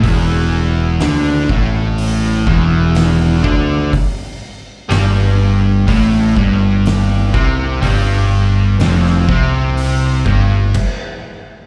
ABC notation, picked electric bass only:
X:1
M:4/4
L:1/8
Q:1/4=62
K:Flyd
V:1 name="Picked electric bass" clef=bass
E,,,2 D,, A,,,2 E,,,2 D,, | z2 G,,,2 A,,, G,,,2 C,, | G,,,2 F,,, C,,2 G,,, z2 |]